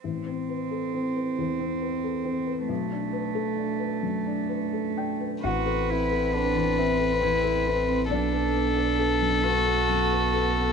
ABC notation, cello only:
X:1
M:6/8
L:1/8
Q:3/8=45
K:Ador
V:1 name="Cello"
C6 | A,6 | F E D C E C | D3 F3 |]